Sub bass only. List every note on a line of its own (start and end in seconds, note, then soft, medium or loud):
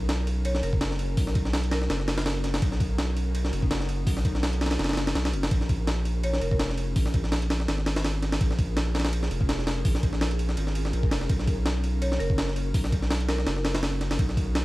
0.00 0.62 B1 loud
0.63 1.16 F#1 medium
1.17 1.88 B1 loud
1.90 2.61 F#1 loud
2.62 3.51 B1 medium
3.53 4.05 F#1 medium
4.07 4.78 B1 loud
4.79 5.15 F#1 medium
5.15 5.35 B1 medium
5.33 5.50 F#1 medium
5.51 6.40 A#1 loud
6.42 6.95 F1 medium
6.96 7.67 A#1 loud
7.68 8.39 G#1 loud
8.41 9.30 A#1 loud
9.31 9.84 F1 medium
9.85 10.56 A#1 loud
10.57 10.93 G#1 medium
10.93 11.13 A#1 loud
11.12 11.28 F1 medium
11.30 12.19 B1 loud
12.20 12.73 F#1 medium
12.74 13.45 B1 loud
13.47 14.18 F#1 loud
14.19 14.65 B1 loud